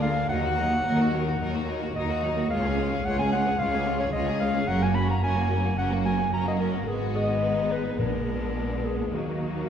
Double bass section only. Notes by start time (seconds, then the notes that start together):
Already playing: D2
0.29 D#2
0.85 D#2
1.41 D#2
1.96 D#2
2.51 C#2
3.05 C#2
3.59 C#2
4.13 C#2
4.68 F#1
5.22 F#1
5.77 F#1
6.32 F#1
6.87 G#1
7.98 A#1
9.13 D#2